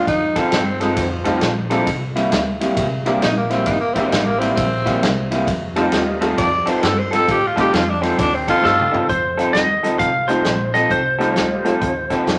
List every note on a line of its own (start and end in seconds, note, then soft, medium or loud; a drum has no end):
0.07 0.35 F2 medium
0.07 0.41 D#4 medium
0.07 kick loud
0.07 snare soft
0.07 ride medium
0.36 0.62 F3 medium
0.36 0.61 C4 medium
0.36 0.61 D#4 medium
0.36 0.53 F4 medium
0.36 0.61 A4 loud
0.36 muted upright bass stroke soft
0.36 kick medium
0.36 snare soft
0.36 ride medium
0.52 0.96 G2 loud
0.52 0.81 C4 medium
0.52 snare loud
0.52 ride medium
0.80 1.06 F3 medium
0.80 1.00 G#3 medium
0.80 1.06 C4 medium
0.80 1.06 D#4 medium
0.80 1.06 A4 medium
0.80 snare soft
0.80 ride medium
0.96 1.41 F2 medium
0.96 1.85 F3 medium
0.96 kick loud
0.96 snare soft
0.96 ride medium
1.24 1.51 F3 medium
1.24 1.40 G3 medium
1.24 1.40 A3 medium
1.24 1.40 C4 medium
1.24 1.51 C4 medium
1.24 1.51 D#4 medium
1.24 1.40 D#4 medium
1.24 1.41 F4 medium
1.24 1.50 A4 medium
1.24 kick medium
1.24 snare soft
1.24 ride medium
1.41 1.85 A#1 medium
1.41 snare loud
1.41 ride medium
1.70 1.87 F3 medium
1.70 1.85 G3 medium
1.70 1.85 A#3 medium
1.70 1.87 C4 medium
1.70 1.86 C4 medium
1.70 1.86 D4 medium
1.70 1.87 D#4 medium
1.70 1.86 E4 medium
1.70 1.87 A4 medium
1.70 snare soft
1.70 ride medium
1.87 2.31 C2 medium
1.87 kick loud
1.87 snare soft
1.87 ride medium
2.16 2.41 C3 medium
2.16 2.41 G3 medium
2.16 2.41 A#3 medium
2.16 2.41 E4 loud
2.16 snare soft
2.16 ride medium
2.32 2.76 D2 loud
2.32 snare loud
2.32 ride medium
2.61 2.87 C3 medium
2.61 2.86 G3 medium
2.61 2.86 A#3 medium
2.61 2.86 E4 medium
2.61 snare soft
2.61 ride medium
2.77 3.21 C2 medium
2.77 kick loud
2.77 snare soft
2.77 ride medium
3.06 3.32 C3 medium
3.06 3.20 G3 medium
3.06 3.31 G3 medium
3.06 3.31 A#3 medium
3.06 3.21 A#3 medium
3.06 3.21 C4 medium
3.06 3.21 D4 medium
3.06 3.31 E4 medium
3.06 3.21 E4 medium
3.06 snare soft
3.06 ride medium
3.22 3.66 A#1 loud
3.22 3.37 D#4 loud
3.22 snare loud
3.22 ride medium
3.38 3.53 A#3 medium
3.50 3.76 C3 medium
3.50 3.76 G3 medium
3.50 3.76 A#3 medium
3.50 3.66 C4 loud
3.50 3.75 E4 medium
3.50 snare soft
3.50 ride medium
3.66 4.11 G1 medium
3.66 3.80 D#4 medium
3.66 kick loud
3.66 snare soft
3.66 ride medium
3.80 3.95 A#3 loud
3.94 4.21 C3 medium
3.94 4.21 G3 medium
3.94 4.54 G3 medium
3.94 4.21 A#3 loud
3.94 4.54 A#3 medium
3.94 4.10 C4 medium
3.94 4.55 C4 medium
3.94 4.21 E4 medium
3.94 kick medium
3.94 snare soft
3.94 ride medium
3.98 4.55 D4 medium
3.98 4.55 E4 medium
4.08 4.56 A1 loud
4.08 4.26 D#4 medium
4.08 ride medium
4.13 snare loud
4.25 4.41 A#3 loud
4.39 4.66 C3 medium
4.39 4.66 G3 medium
4.39 4.66 A#3 medium
4.39 4.55 C4 medium
4.39 4.66 E4 medium
4.39 snare soft
4.39 ride medium
4.55 5.01 A#1 medium
4.55 5.44 C4 loud
4.55 kick loud
4.55 snare soft
4.55 ride medium
4.86 5.11 C3 medium
4.86 5.11 G3 medium
4.86 5.11 A#3 medium
4.86 5.11 E4 medium
4.86 kick medium
4.86 snare soft
4.86 ride medium
5.03 5.46 C2 loud
5.03 snare loud
5.03 ride medium
5.31 5.48 C3 medium
5.31 5.48 G3 medium
5.31 5.48 A#3 medium
5.31 5.48 E4 medium
5.31 snare soft
5.31 ride medium
5.47 5.91 F2 medium
5.47 kick loud
5.47 snare soft
5.47 ride medium
5.76 6.02 F3 medium
5.76 6.18 G3 medium
5.76 6.19 A3 medium
5.76 6.02 C4 medium
5.76 6.19 C4 medium
5.76 6.02 D#4 medium
5.76 6.19 D#4 medium
5.76 6.20 F4 medium
5.76 6.01 A4 loud
5.76 snare soft
5.76 ride medium
5.92 6.37 D#2 loud
5.92 snare medium
5.92 ride medium
6.21 6.47 F3 medium
6.21 6.36 G3 medium
6.21 6.36 A3 medium
6.21 6.36 C4 medium
6.21 6.47 C4 medium
6.21 6.46 D#4 medium
6.21 6.37 D#4 medium
6.21 6.37 F4 medium
6.21 6.46 A4 medium
6.21 snare soft
6.21 ride medium
6.38 6.65 F2 medium
6.38 6.70 D5 loud
6.38 kick loud
6.38 snare soft
6.38 ride loud
6.66 6.92 F3 medium
6.66 6.92 C4 medium
6.66 6.91 D#4 medium
6.66 6.91 A4 medium
6.66 6.84 C5 medium
6.66 muted upright bass stroke soft
6.66 snare soft
6.66 ride medium
6.83 7.27 G2 loud
6.83 7.00 A4 loud
6.83 snare loud
6.83 ride medium
6.99 7.13 C5 medium
7.11 7.37 F3 medium
7.11 7.37 C4 medium
7.11 7.37 D#4 medium
7.11 7.36 A4 medium
7.11 7.33 A4 loud
7.11 snare soft
7.11 ride medium
7.28 7.72 A2 medium
7.28 7.48 G4 loud
7.28 kick loud
7.28 snare soft
7.28 ride medium
7.47 7.59 F4 medium
7.56 7.82 F3 medium
7.56 7.72 G3 medium
7.56 7.72 A3 medium
7.56 7.82 C4 medium
7.56 7.72 C4 medium
7.56 7.82 D#4 medium
7.56 7.72 D#4 medium
7.56 7.73 F4 medium
7.56 7.81 A4 loud
7.56 kick medium
7.56 snare soft
7.56 ride medium
7.60 7.73 G4 loud
7.73 8.17 F2 loud
7.73 7.91 F4 medium
7.73 snare loud
7.73 ride medium
7.90 8.03 D4 medium
8.01 8.27 F3 medium
8.01 8.21 C4 medium
8.01 8.27 C4 medium
8.01 8.27 D#4 medium
8.01 8.27 A4 medium
8.01 snare soft
8.01 ride medium
8.19 8.63 D#2 medium
8.19 8.36 D4 loud
8.19 kick loud
8.19 snare soft
8.19 ride medium
8.34 8.49 C4 medium
8.48 8.73 F3 medium
8.48 8.73 C4 medium
8.48 8.73 D#4 medium
8.48 9.08 F4 loud
8.48 8.73 A4 loud
8.48 kick medium
8.48 snare soft
8.48 ride medium
8.62 8.91 G2 loud
8.62 8.89 G3 medium
8.62 8.89 A3 medium
8.62 8.89 C4 medium
8.62 8.90 D#4 medium
8.62 8.90 G4 medium
8.62 9.09 A4 medium
8.62 snare medium
8.79 mid tom medium
8.92 9.09 F3 medium
8.92 9.09 C4 medium
8.92 9.09 D#4 medium
8.92 9.08 A4 medium
8.92 muted upright bass stroke soft
8.92 floor tom loud
9.09 9.53 F2 medium
9.09 9.56 C5 medium
9.09 kick loud
9.09 closed hi-hat medium
9.37 9.64 F3 medium
9.37 9.63 C4 medium
9.37 9.63 D#4 medium
9.37 9.63 A4 medium
9.37 snare soft
9.37 closed hi-hat medium
9.53 9.99 D#2 medium
9.53 9.96 D#5 medium
9.53 snare medium
9.53 closed hi-hat medium
9.83 10.09 F3 medium
9.83 10.09 C4 medium
9.83 10.08 D#4 medium
9.83 10.08 A4 medium
9.83 snare soft
9.83 closed hi-hat medium
9.99 10.44 C2 medium
9.99 10.30 F5 loud
9.99 kick loud
9.99 snare soft
9.99 closed hi-hat medium
10.28 10.55 F3 medium
10.28 10.43 G3 medium
10.28 10.43 A3 medium
10.28 10.44 C4 medium
10.28 10.54 C4 medium
10.28 10.54 D#4 medium
10.28 10.44 D#4 medium
10.28 10.44 F4 medium
10.28 10.54 A4 medium
10.28 10.75 C5 medium
10.28 snare soft
10.28 closed hi-hat medium
10.44 10.90 A#1 medium
10.44 snare loud
10.44 closed hi-hat medium
10.74 11.00 F3 medium
10.74 11.00 C4 medium
10.74 11.00 D#4 medium
10.74 10.99 A4 medium
10.74 10.91 D#5 medium
10.74 snare soft
10.74 closed hi-hat medium
10.90 11.35 C2 medium
10.90 12.24 C5 medium
10.90 kick medium
10.90 closed hi-hat medium
11.19 11.45 F3 medium
11.19 11.62 G3 medium
11.19 11.62 A3 medium
11.19 11.45 C4 medium
11.19 11.63 C4 medium
11.19 11.44 D#4 medium
11.19 11.63 D#4 medium
11.19 11.63 F4 medium
11.19 11.44 A4 medium
11.19 snare soft
11.19 closed hi-hat medium
11.36 11.80 D2 medium
11.36 snare medium
11.36 closed hi-hat medium
11.64 11.90 F3 medium
11.64 11.79 G3 medium
11.64 11.80 A3 medium
11.64 11.80 C4 medium
11.64 11.90 C4 medium
11.64 11.80 D#4 medium
11.64 11.90 D#4 medium
11.64 11.80 F4 medium
11.64 11.90 A4 medium
11.64 snare soft
11.64 closed hi-hat medium
11.82 12.26 D#2 medium
11.82 kick loud
11.82 closed hi-hat medium
12.10 12.36 F3 medium
12.10 12.36 C4 medium
12.10 12.36 D#4 medium
12.10 12.36 A4 medium
12.10 kick medium
12.10 snare soft
12.10 closed hi-hat medium
12.27 12.39 F2 medium
12.27 snare medium
12.27 closed hi-hat medium